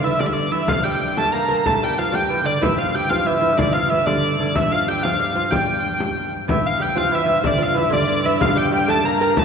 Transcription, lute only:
0, 0, Header, 1, 2, 480
1, 0, Start_track
1, 0, Tempo, 321371
1, 1032, Time_signature, 6, 3, 24, 8
1, 14110, End_track
2, 0, Start_track
2, 0, Title_t, "Lute"
2, 0, Program_c, 0, 24
2, 54, Note_on_c, 0, 52, 60
2, 281, Note_off_c, 0, 52, 0
2, 287, Note_on_c, 0, 50, 68
2, 395, Note_off_c, 0, 50, 0
2, 484, Note_on_c, 0, 50, 56
2, 754, Note_off_c, 0, 50, 0
2, 768, Note_on_c, 0, 52, 73
2, 1025, Note_on_c, 0, 53, 70
2, 1028, Note_off_c, 0, 52, 0
2, 1254, Note_off_c, 0, 53, 0
2, 1260, Note_on_c, 0, 55, 79
2, 1761, Note_on_c, 0, 57, 74
2, 1762, Note_off_c, 0, 55, 0
2, 1980, Note_off_c, 0, 57, 0
2, 1986, Note_on_c, 0, 58, 76
2, 2199, Note_off_c, 0, 58, 0
2, 2217, Note_on_c, 0, 58, 79
2, 2474, Note_off_c, 0, 58, 0
2, 2482, Note_on_c, 0, 57, 74
2, 2726, Note_off_c, 0, 57, 0
2, 2729, Note_on_c, 0, 55, 68
2, 2954, Note_off_c, 0, 55, 0
2, 2960, Note_on_c, 0, 53, 63
2, 3163, Note_off_c, 0, 53, 0
2, 3169, Note_on_c, 0, 55, 66
2, 3426, Note_on_c, 0, 52, 61
2, 3431, Note_off_c, 0, 55, 0
2, 3637, Note_off_c, 0, 52, 0
2, 3643, Note_on_c, 0, 50, 70
2, 3898, Note_off_c, 0, 50, 0
2, 3904, Note_on_c, 0, 52, 69
2, 4148, Note_on_c, 0, 53, 62
2, 4159, Note_off_c, 0, 52, 0
2, 4401, Note_off_c, 0, 53, 0
2, 4407, Note_on_c, 0, 55, 63
2, 4633, Note_off_c, 0, 55, 0
2, 4639, Note_on_c, 0, 53, 68
2, 4862, Note_off_c, 0, 53, 0
2, 4869, Note_on_c, 0, 52, 67
2, 5071, Note_off_c, 0, 52, 0
2, 5089, Note_on_c, 0, 52, 70
2, 5327, Note_off_c, 0, 52, 0
2, 5333, Note_on_c, 0, 50, 66
2, 5579, Note_on_c, 0, 53, 64
2, 5594, Note_off_c, 0, 50, 0
2, 5835, Note_on_c, 0, 52, 59
2, 5837, Note_off_c, 0, 53, 0
2, 6068, Note_off_c, 0, 52, 0
2, 6074, Note_on_c, 0, 50, 64
2, 6556, Note_off_c, 0, 50, 0
2, 6574, Note_on_c, 0, 50, 64
2, 6796, Note_off_c, 0, 50, 0
2, 6802, Note_on_c, 0, 52, 66
2, 7049, Note_off_c, 0, 52, 0
2, 7058, Note_on_c, 0, 53, 59
2, 7278, Note_off_c, 0, 53, 0
2, 7284, Note_on_c, 0, 55, 60
2, 7530, Note_off_c, 0, 55, 0
2, 7537, Note_on_c, 0, 53, 68
2, 7751, Note_off_c, 0, 53, 0
2, 7757, Note_on_c, 0, 55, 67
2, 7992, Note_off_c, 0, 55, 0
2, 7997, Note_on_c, 0, 53, 65
2, 8222, Note_off_c, 0, 53, 0
2, 8238, Note_on_c, 0, 55, 58
2, 9379, Note_off_c, 0, 55, 0
2, 9676, Note_on_c, 0, 52, 62
2, 10151, Note_on_c, 0, 55, 63
2, 10172, Note_off_c, 0, 52, 0
2, 10382, Note_off_c, 0, 55, 0
2, 10388, Note_on_c, 0, 53, 71
2, 10616, Note_on_c, 0, 52, 62
2, 10641, Note_off_c, 0, 53, 0
2, 10773, Note_on_c, 0, 53, 45
2, 10813, Note_off_c, 0, 52, 0
2, 10843, Note_on_c, 0, 52, 68
2, 10856, Note_off_c, 0, 53, 0
2, 11094, Note_off_c, 0, 52, 0
2, 11100, Note_on_c, 0, 50, 69
2, 11323, Note_on_c, 0, 53, 68
2, 11357, Note_off_c, 0, 50, 0
2, 11562, Note_off_c, 0, 53, 0
2, 11567, Note_on_c, 0, 52, 65
2, 11794, Note_off_c, 0, 52, 0
2, 11800, Note_on_c, 0, 50, 72
2, 12042, Note_off_c, 0, 50, 0
2, 12060, Note_on_c, 0, 50, 66
2, 12298, Note_off_c, 0, 50, 0
2, 12304, Note_on_c, 0, 52, 78
2, 12547, Note_on_c, 0, 53, 76
2, 12557, Note_off_c, 0, 52, 0
2, 12772, Note_off_c, 0, 53, 0
2, 12778, Note_on_c, 0, 55, 80
2, 13008, Note_off_c, 0, 55, 0
2, 13026, Note_on_c, 0, 55, 75
2, 13253, Note_off_c, 0, 55, 0
2, 13263, Note_on_c, 0, 57, 78
2, 13491, Note_off_c, 0, 57, 0
2, 13504, Note_on_c, 0, 58, 76
2, 13739, Note_off_c, 0, 58, 0
2, 13757, Note_on_c, 0, 58, 91
2, 13988, Note_off_c, 0, 58, 0
2, 13994, Note_on_c, 0, 57, 83
2, 14110, Note_off_c, 0, 57, 0
2, 14110, End_track
0, 0, End_of_file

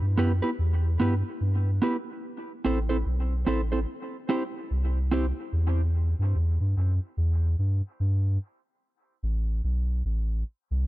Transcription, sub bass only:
0, 0, Header, 1, 2, 480
1, 0, Start_track
1, 0, Key_signature, 1, "minor"
1, 0, Tempo, 823045
1, 1302, Time_signature, 4, 2, 24, 8
1, 6340, End_track
2, 0, Start_track
2, 0, Title_t, "Sub bass"
2, 0, Program_c, 0, 38
2, 8, Note_on_c, 0, 43, 96
2, 97, Note_off_c, 0, 43, 0
2, 104, Note_on_c, 0, 42, 87
2, 239, Note_off_c, 0, 42, 0
2, 343, Note_on_c, 0, 40, 103
2, 569, Note_off_c, 0, 40, 0
2, 582, Note_on_c, 0, 43, 86
2, 718, Note_off_c, 0, 43, 0
2, 821, Note_on_c, 0, 43, 98
2, 1048, Note_off_c, 0, 43, 0
2, 1546, Note_on_c, 0, 33, 99
2, 1770, Note_off_c, 0, 33, 0
2, 1784, Note_on_c, 0, 35, 92
2, 2009, Note_off_c, 0, 35, 0
2, 2025, Note_on_c, 0, 33, 86
2, 2250, Note_off_c, 0, 33, 0
2, 2746, Note_on_c, 0, 36, 103
2, 3106, Note_off_c, 0, 36, 0
2, 3223, Note_on_c, 0, 40, 109
2, 3584, Note_off_c, 0, 40, 0
2, 3610, Note_on_c, 0, 43, 96
2, 3698, Note_off_c, 0, 43, 0
2, 3707, Note_on_c, 0, 40, 92
2, 3840, Note_off_c, 0, 40, 0
2, 3851, Note_on_c, 0, 43, 80
2, 3938, Note_off_c, 0, 43, 0
2, 3946, Note_on_c, 0, 42, 92
2, 4080, Note_off_c, 0, 42, 0
2, 4183, Note_on_c, 0, 40, 106
2, 4408, Note_off_c, 0, 40, 0
2, 4424, Note_on_c, 0, 43, 84
2, 4559, Note_off_c, 0, 43, 0
2, 4665, Note_on_c, 0, 43, 100
2, 4889, Note_off_c, 0, 43, 0
2, 5382, Note_on_c, 0, 33, 101
2, 5607, Note_off_c, 0, 33, 0
2, 5622, Note_on_c, 0, 35, 93
2, 5846, Note_off_c, 0, 35, 0
2, 5862, Note_on_c, 0, 33, 90
2, 6086, Note_off_c, 0, 33, 0
2, 6245, Note_on_c, 0, 36, 99
2, 6334, Note_off_c, 0, 36, 0
2, 6340, End_track
0, 0, End_of_file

